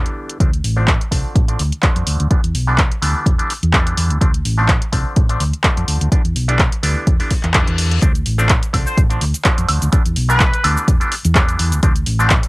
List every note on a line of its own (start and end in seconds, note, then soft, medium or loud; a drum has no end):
0.00 0.38 D3 medium
0.00 0.38 E3 medium
0.00 0.38 G3 medium
0.00 0.38 B3 medium
0.00 0.38 D4 medium
0.06 closed hi-hat soft
0.29 closed hi-hat soft
0.40 0.60 D2 medium
0.40 0.50 D3 medium
0.40 0.50 F3 medium
0.40 0.50 A3 medium
0.40 0.51 C4 medium
0.40 0.51 D4 medium
0.40 kick loud
0.40 closed hi-hat medium
0.53 closed hi-hat soft
0.64 0.97 A1 medium
0.64 open hi-hat medium
0.77 0.91 D3 medium
0.77 0.91 F3 medium
0.77 0.91 A3 medium
0.77 0.91 C4 medium
0.77 0.91 D4 medium
0.88 kick loud
0.88 clap loud
0.88 closed hi-hat medium
1.01 closed hi-hat soft
1.11 1.22 C2 medium
1.11 1.45 D3 medium
1.11 1.45 F3 medium
1.11 1.45 A3 medium
1.11 1.46 C4 medium
1.11 1.46 D4 medium
1.11 kick medium
1.11 open hi-hat loud
1.35 1.55 A1 medium
1.35 kick loud
1.35 closed hi-hat medium
1.48 1.62 D3 medium
1.48 1.62 F3 medium
1.48 1.62 A3 medium
1.48 1.63 C4 medium
1.48 1.63 D4 medium
1.48 closed hi-hat soft
1.59 1.70 D2 medium
1.59 open hi-hat loud
1.72 closed hi-hat soft
1.82 2.28 D3 medium
1.82 2.28 F3 medium
1.82 2.28 A3 medium
1.82 2.28 C4 medium
1.82 2.28 D4 medium
1.82 kick loud
1.82 clap loud
1.82 closed hi-hat medium
1.96 2.05 F2 medium
1.96 closed hi-hat soft
2.07 2.18 D2 medium
2.07 open hi-hat loud
2.20 2.29 D2 medium
2.20 closed hi-hat soft
2.31 2.41 D3 medium
2.31 2.41 E3 medium
2.31 2.41 G3 medium
2.31 2.41 B3 medium
2.31 2.41 D4 medium
2.31 kick loud
2.31 closed hi-hat medium
2.44 2.53 E2 medium
2.44 closed hi-hat soft
2.55 2.87 B1 medium
2.55 open hi-hat medium
2.67 2.81 D3 medium
2.67 2.81 E3 medium
2.67 2.82 G3 medium
2.67 2.82 B3 medium
2.67 2.82 D4 loud
2.78 kick loud
2.78 clap loud
2.78 closed hi-hat medium
2.92 closed hi-hat soft
3.02 3.13 D2 medium
3.02 3.36 D3 medium
3.02 3.36 E3 medium
3.02 3.36 G3 medium
3.02 3.36 B3 medium
3.02 3.36 D4 medium
3.02 open hi-hat medium
3.26 3.37 E1 medium
3.26 kick loud
3.26 closed hi-hat medium
3.38 3.53 D3 medium
3.38 3.53 E3 medium
3.38 3.53 G3 medium
3.38 3.53 B3 medium
3.38 3.53 D4 medium
3.38 closed hi-hat soft
3.50 open hi-hat medium
3.63 3.94 E2 medium
3.63 closed hi-hat soft
3.73 4.19 D3 medium
3.73 4.19 E3 medium
3.73 4.19 G3 medium
3.73 4.19 B3 medium
3.73 4.19 D4 medium
3.73 kick loud
3.73 clap loud
3.73 closed hi-hat medium
3.87 closed hi-hat soft
3.97 4.10 E2 medium
3.97 open hi-hat loud
4.10 4.19 D2 medium
4.10 closed hi-hat soft
4.21 4.41 D2 medium
4.21 4.31 D3 medium
4.21 4.31 F3 medium
4.21 4.31 A3 medium
4.21 4.31 C4 medium
4.21 4.32 D4 medium
4.21 kick loud
4.21 closed hi-hat medium
4.34 closed hi-hat soft
4.45 4.78 A1 medium
4.45 open hi-hat medium
4.58 4.72 D3 medium
4.58 4.72 F3 medium
4.58 4.72 A3 medium
4.58 4.72 C4 medium
4.58 4.72 D4 loud
4.68 kick loud
4.68 clap loud
4.68 closed hi-hat medium
4.82 closed hi-hat medium
4.92 5.03 C2 medium
4.92 5.26 D3 medium
4.92 5.26 F3 medium
4.92 5.26 A3 medium
4.92 5.27 C4 medium
4.92 5.27 D4 medium
4.92 kick medium
4.92 open hi-hat medium
5.16 5.36 A1 medium
5.16 kick loud
5.16 closed hi-hat medium
5.29 5.43 D3 medium
5.29 5.43 F3 medium
5.29 5.43 A3 medium
5.29 5.43 C4 medium
5.29 5.44 D4 medium
5.29 closed hi-hat soft
5.40 5.51 D2 medium
5.40 open hi-hat loud
5.54 closed hi-hat soft
5.64 6.09 D3 medium
5.64 6.09 F3 medium
5.64 6.09 A3 medium
5.64 6.09 C4 medium
5.64 6.10 D4 medium
5.64 kick loud
5.64 clap loud
5.64 closed hi-hat medium
5.77 5.86 F2 medium
5.77 closed hi-hat medium
5.88 5.99 D2 medium
5.88 open hi-hat medium
6.01 6.10 D2 medium
6.01 closed hi-hat soft
6.12 6.22 D3 medium
6.12 6.22 E3 medium
6.12 6.22 G3 medium
6.12 6.22 B3 medium
6.12 6.22 D4 medium
6.12 kick loud
6.12 closed hi-hat medium
6.25 6.34 E2 medium
6.25 closed hi-hat soft
6.36 6.69 B1 medium
6.36 open hi-hat medium
6.48 6.62 D3 medium
6.48 6.62 E3 medium
6.48 6.62 G3 medium
6.48 6.62 B3 medium
6.48 6.63 D4 loud
6.48 closed hi-hat soft
6.59 kick loud
6.59 clap loud
6.59 closed hi-hat medium
6.72 closed hi-hat medium
6.83 6.94 D2 medium
6.83 7.17 D3 medium
6.83 7.17 E3 medium
6.83 7.17 G3 medium
6.83 7.17 B3 medium
6.83 7.17 D4 medium
6.83 open hi-hat loud
7.07 7.18 E1 loud
7.07 kick loud
7.07 closed hi-hat medium
7.07 reverse cymbal medium
7.20 7.34 D3 medium
7.20 7.34 E3 medium
7.20 7.34 G3 medium
7.20 7.34 B3 medium
7.20 7.34 D4 medium
7.20 open hi-hat soft
7.31 kick medium
7.31 open hi-hat loud
7.43 7.67 E2 medium
7.43 clap soft
7.43 closed hi-hat soft
7.54 8.00 D3 medium
7.54 8.00 E3 medium
7.54 8.00 G3 medium
7.54 8.00 B3 medium
7.54 8.00 D4 medium
7.54 kick loud
7.54 clap loud
7.54 closed hi-hat medium
7.67 7.99 E2 medium
7.67 closed hi-hat medium
7.78 open hi-hat loud
7.91 closed hi-hat soft
8.02 8.22 D2 medium
8.02 8.12 D3 medium
8.02 8.12 F3 medium
8.02 8.12 A3 medium
8.02 8.12 C4 medium
8.02 8.12 D4 medium
8.02 kick loud
8.02 closed hi-hat medium
8.02 shaker medium
8.15 closed hi-hat medium
8.15 shaker soft
8.26 8.59 A1 medium
8.26 open hi-hat loud
8.38 8.53 D3 medium
8.38 8.53 F3 medium
8.38 8.53 A3 medium
8.38 8.53 C4 medium
8.38 8.53 D4 loud
8.38 shaker medium
8.49 kick loud
8.49 clap loud
8.49 closed hi-hat medium
8.49 shaker medium
8.63 closed hi-hat medium
8.63 shaker soft
8.73 8.84 C2 medium
8.73 9.07 D3 medium
8.73 9.07 F3 medium
8.73 9.07 A3 medium
8.73 9.07 C4 medium
8.73 9.07 D4 medium
8.73 kick medium
8.73 open hi-hat loud
8.73 high woodblock medium
8.86 8.97 C5 medium
8.86 shaker medium
8.97 9.17 A1 medium
8.97 kick loud
8.97 closed hi-hat medium
8.97 shaker medium
9.10 9.24 D3 medium
9.10 9.24 F3 medium
9.10 9.24 A3 medium
9.10 9.24 C4 medium
9.10 9.24 D4 medium
9.10 closed hi-hat soft
9.10 shaker soft
9.21 9.32 D2 medium
9.21 open hi-hat loud
9.34 closed hi-hat soft
9.34 shaker medium
9.44 9.90 D3 medium
9.44 9.90 F3 medium
9.44 9.90 A3 medium
9.44 9.90 C4 medium
9.44 9.90 D4 medium
9.44 kick loud
9.44 clap loud
9.44 closed hi-hat medium
9.44 shaker medium
9.58 9.67 F2 medium
9.58 closed hi-hat medium
9.58 shaker soft
9.68 9.80 D2 medium
9.68 open hi-hat loud
9.68 high woodblock medium
9.82 9.91 D2 medium
9.82 closed hi-hat soft
9.82 shaker medium
9.92 10.02 D3 medium
9.92 10.02 E3 medium
9.92 10.03 G3 medium
9.92 10.03 B3 medium
9.92 10.03 D4 medium
9.92 kick loud
9.92 closed hi-hat medium
9.92 shaker medium
10.05 10.15 E2 medium
10.05 closed hi-hat soft
10.05 shaker soft
10.16 10.50 B1 medium
10.16 open hi-hat loud
10.29 10.43 D3 medium
10.29 10.43 E3 medium
10.29 10.43 G3 medium
10.29 10.43 B3 medium
10.29 10.43 D4 loud
10.29 10.64 B4 medium
10.29 shaker medium
10.40 kick loud
10.40 clap loud
10.40 closed hi-hat medium
10.40 shaker medium
10.54 closed hi-hat soft
10.54 shaker soft
10.64 10.75 D2 medium
10.64 10.98 D3 medium
10.64 10.98 E3 medium
10.64 10.98 G3 medium
10.64 10.98 B3 medium
10.64 10.98 D4 medium
10.64 open hi-hat loud
10.64 high woodblock medium
10.77 shaker medium
10.88 10.98 E1 medium
10.88 kick loud
10.88 closed hi-hat medium
10.88 shaker medium
11.00 11.14 D3 medium
11.00 11.15 E3 medium
11.00 11.15 G3 medium
11.00 11.15 B3 medium
11.00 11.15 D4 medium
11.00 closed hi-hat soft
11.00 shaker soft
11.12 open hi-hat loud
11.25 11.56 E2 medium
11.25 closed hi-hat soft
11.25 shaker medium
11.35 11.80 D3 medium
11.35 11.81 E3 medium
11.35 11.81 G3 medium
11.35 11.81 B3 medium
11.35 11.81 D4 medium
11.35 kick loud
11.35 clap loud
11.35 closed hi-hat medium
11.35 shaker medium
11.49 closed hi-hat medium
11.49 shaker soft
11.59 11.72 E2 medium
11.59 open hi-hat loud
11.72 11.81 D2 loud
11.72 closed hi-hat soft
11.72 shaker medium
11.83 12.03 D2 medium
11.83 11.93 D3 medium
11.83 11.93 F3 medium
11.83 11.93 A3 medium
11.83 11.93 C4 medium
11.83 11.93 D4 medium
11.83 kick loud
11.83 closed hi-hat medium
11.83 shaker medium
11.96 closed hi-hat soft
11.96 shaker soft
12.06 12.40 A1 medium
12.06 open hi-hat loud
12.19 12.34 D3 medium
12.19 12.34 F3 medium
12.19 12.34 A3 medium
12.19 12.34 C4 medium
12.19 12.34 D4 medium
12.19 shaker medium
12.30 kick loud
12.30 clap loud
12.30 closed hi-hat medium
12.30 shaker medium
12.43 closed hi-hat soft
12.43 shaker soft